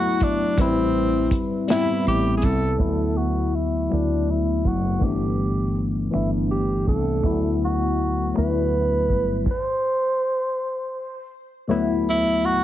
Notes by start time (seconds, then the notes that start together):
Already playing: F#3 A3 B3 E4 F#4
0.20 D4, kick, closed hi-hat
0.58 A1 G3 C4 E4 B4, kick, closed hi-hat
1.31 muted fretless electric bass stroke, kick, closed hi-hat
1.68 G3 B3 C4 E4, snare, closed hi-hat
2.07 A1 G4
2.37 G#4
2.42 C2 A4, kick, closed hi-hat
2.78 D2 F#3 A3 B3 E4, kick, closed hi-hat
3.17 F#4
3.54 E4, closed hi-hat
3.89 D2 F#3 A3 B3 D4 E4, finger snap, closed hi-hat
4.30 E4
4.64 F#1 F#4, kick, closed hi-hat
4.99 G1 E3 A3 B3 D4, kick, closed hi-hat
5.04 G4
5.76 closed hi-hat
6.11 G1 E3 A3 B3 D4 E4, finger snap, closed hi-hat
6.51 G4
6.86 C2 A4, kick, closed hi-hat
7.23 D2 F#3 A3 B3 E4, kick, closed hi-hat
7.65 F#4
7.98 closed hi-hat
8.34 D2 F#3 A3 B3 E4, finger snap, closed hi-hat
8.39 B4
9.08 G1, kick, closed hi-hat
9.46 kick, crash
9.51 C5
11.68 D2 F#3 A3 B3 E4
12.09 E4
12.45 F#4